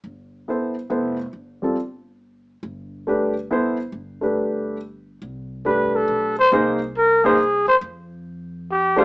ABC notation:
X:1
M:3/4
L:1/8
Q:"Swing" 1/4=139
K:C
V:1 name="Trumpet"
z6 | z6 | z6 | z6 |
z2 B A2 c | z2 _B _A2 c | z4 G F |]
V:2 name="Grand piano"
z2 [B,EAc] z [B,EAc] z | z [G,CFA] z4 | z2 [A,DGB] z [B,EAc] z | z [A,DGB]3 z2 |
z2 [A,DGB]3 z | [_B,_E_Ac] z2 [B,EAc] z2 | z4 z [A,DGc] |]
V:3 name="Upright bass" clef=bass
G,,,4 F,,,2 | G,,,6 | G,,,6 | G,,,6 |
C,,4 B,,,2 | C,,4- C,, _E,, | F,,6 |]